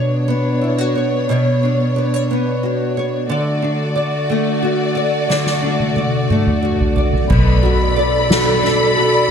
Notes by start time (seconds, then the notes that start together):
Already playing: B2 B3 D4 F#4 C#5
0.28 B3
0.61 E4
0.78 F#4
0.95 C#5
1.29 B2 C#5
1.63 D4
1.96 B4
2.14 C#5
2.31 B3
2.63 F#4
2.97 C#5
3.29 D3 A3 F#4 D5
3.62 D4
3.96 D5
4.30 A3
4.62 F#4
4.95 D5
5.30 D3 D5, snare
5.46 snare
5.62 D4
5.80 high tom
5.96 D5, high tom
6.30 A3, mid tom
6.47 mid tom
6.63 F#4
6.80 floor tom
6.96 D5, floor tom
7.13 floor tom
7.30 B1 B2 A4 D5 B5, kick, crash
7.63 F#4, ride
7.96 D5, ride
8.30 F#4, snare, ride
8.63 D4, snare, ride
8.97 F#4, ride